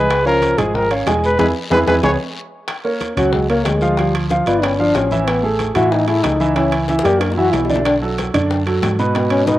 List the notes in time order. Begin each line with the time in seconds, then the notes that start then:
Already playing: C#2 G#3 G#4 B4 G#5
0.09 high bongo, high conga, high timbale, long guiro
0.25 F3 C#4 A#4 C#5 F5, high conga
0.41 high bongo, high conga, high timbale, short guiro
0.58 G#1 F3 G#3 G#4 G#5, high conga, low conga, high timbale, short guiro
0.74 F3 A#4, high bongo, high conga, low conga, long guiro
0.90 C#4 C#5 F5, high conga, high timbale
1.06 E1 G#3 G#4 G#5, high bongo, low bongo, high conga, high timbale, low timbale, short guiro
1.23 G#3 B4, high conga, short guiro
1.39 E2 G#3 E4 G#4 B4, high bongo, high conga, high timbale, long guiro
1.71 E2 G#3 E4 G#4 B4, high bongo, high conga, high timbale, long guiro
1.87 E2 G#3 E4 G#4 B4, high bongo, high conga, high timbale, long guiro
2.03 C#2 G#3 G#4 B4 C#5, high bongo, high conga, high timbale, long guiro
2.68 high bongo, high conga, high timbale, long guiro
2.84 A#3 A#4 C#5, high conga
3.01 high bongo, high conga, high timbale, short guiro
3.16 C#2 F#3 C#4 F#4 F#5, high conga, low conga, high timbale, short guiro
3.33 G#3, high bongo, high conga, low conga, long guiro
3.50 A#3 A#4 C#5, high conga, high timbale
3.65 D2 G#3, high bongo, low bongo, high conga, high timbale, short guiro
3.81 F3 F4 F5, short guiro
3.97 F3 G3 F4 F5, high bongo, high conga, high timbale, long guiro
4.14 high bongo, high conga, high timbale
4.30 F3 F4 F5, high bongo, high conga, short guiro
4.46 G1 B3 F4 B4 D5, high bongo, high conga, high timbale, short guiro
4.62 C#4, high bongo, high conga, high timbale, long guiro
4.79 F3 D4 F4 F5, high conga
4.95 A1 C#4, high bongo, low bongo, high conga, high timbale, short guiro
5.11 E3 E4 E5, high bongo, high conga, short guiro
5.27 B3, high bongo, high conga, high timbale, long guiro
5.43 A3 G#4 A4, high conga
5.59 high bongo, high conga, high timbale, short guiro
5.75 A2 E3 E4 F#4 E5, high conga, low conga, high timbale, short guiro
5.92 D#4, high bongo, high conga, long guiro
6.07 A3 E4 G#4 A4, high conga, high timbale
6.23 C#2 D#4, high bongo, low bongo, high conga, high timbale, low timbale, short guiro
6.40 E3 E4 E5, high conga, short guiro
6.55 E3 C#4 E4 E5, high bongo, high conga, high timbale, long guiro
6.72 high bongo, high conga, high timbale
6.88 E3 E4 E5, high bongo, high conga, short guiro
6.99 high bongo
7.04 F#2 A#3 G4 A#4 D5, high conga, high timbale, short guiro
7.20 D4, high bongo, high conga, high timbale, long guiro
7.32 low bongo
7.37 E3 E4 F#4 E5, high conga
7.53 B1 E4, low bongo, high conga, high timbale, low timbale, short guiro
7.65 low bongo
7.70 D3 D4 D5, high conga, short guiro
7.76 low bongo
7.85 D4, high bongo, high conga, high timbale, long guiro
8.02 F#3 F#4 A4, high conga
8.18 high bongo, high conga, high timbale, short guiro
8.34 F#2 D3 D4 D5, high conga, low conga, high timbale, short guiro
8.50 high bongo, high conga, long guiro
8.66 F#3 F#4 A4, high conga, high timbale
8.82 G#2, high bongo, low bongo, high conga, high timbale, short guiro
8.99 B2 B3 B4, high conga, short guiro
9.15 B2 B3 B4, high bongo, high conga, high timbale, long guiro
9.30 C#4, high bongo, high conga, high timbale
9.47 B2 B3 D#4 B4, high bongo, high conga, short guiro